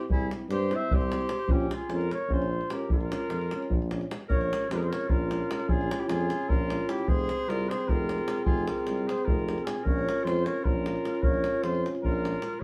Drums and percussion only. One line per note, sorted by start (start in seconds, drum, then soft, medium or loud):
0.10 davul low medium
0.20 davul high soft
0.31 davul high medium
0.51 davul high medium
0.62 davul high soft
0.71 davul high soft
0.91 davul low medium
1.01 davul high soft
1.12 davul high medium
1.21 davul high soft
1.29 davul high medium
1.49 davul low medium
1.60 davul high soft
1.71 davul high medium
1.90 davul high medium
2.01 davul high soft
2.11 davul high medium
2.30 davul low medium
2.42 davul high soft
2.61 davul high soft
2.70 davul high medium
2.90 davul low medium
3.01 davul high soft
3.12 davul high medium
3.20 davul high soft
3.30 davul high medium
3.41 davul high soft
3.51 davul high medium
3.62 davul high soft
3.71 davul low medium
3.82 davul high soft
3.91 davul high medium
4.01 davul high soft
4.11 davul high medium
4.21 davul high soft
4.30 davul low medium
4.41 davul high soft
4.53 davul high medium
4.62 davul high soft
4.71 davul high medium
4.83 davul high soft
4.93 davul high medium
5.01 davul high soft
5.09 davul low medium
5.31 davul high medium
5.51 davul high medium
5.59 davul high soft
5.69 davul low medium
5.81 davul high soft
5.91 davul high medium
6.00 davul high soft
6.09 davul high medium
6.21 davul high soft
6.30 davul high medium
6.41 davul high soft
6.50 davul low medium
6.70 davul high medium
6.81 davul high soft
6.89 davul high medium
6.99 davul high soft
7.08 davul low medium
7.19 davul high soft
7.29 davul high medium
7.41 davul high soft
7.50 davul high medium
7.61 davul high soft
7.71 davul high medium
7.81 davul high soft
7.89 davul low medium
8.09 davul high medium
8.18 davul high soft
8.28 davul high medium
8.38 davul high soft
8.46 davul low medium
8.58 davul high soft
8.68 davul high medium
8.78 davul high soft
8.87 davul high medium
8.97 davul high soft
9.09 davul high medium
9.18 davul high soft
9.28 davul low medium
9.39 davul high soft
9.49 davul high medium
9.58 davul high soft
9.67 davul high medium
9.77 davul high soft
9.86 davul low medium
9.98 davul high soft
10.09 davul high medium
10.18 davul high soft
10.27 davul high medium
10.36 davul high soft
10.46 davul high medium
10.56 davul high soft
10.65 davul low medium
10.86 davul high medium
10.96 davul high soft
11.05 davul high medium
11.15 davul high soft
11.23 davul low medium
11.34 davul high soft
11.44 davul high medium
11.54 davul high soft
11.64 davul high medium
11.75 davul high soft
11.86 davul high soft
11.95 davul high soft
12.05 davul low medium
12.25 davul high medium
12.34 davul high soft
12.42 davul high medium
12.53 davul high soft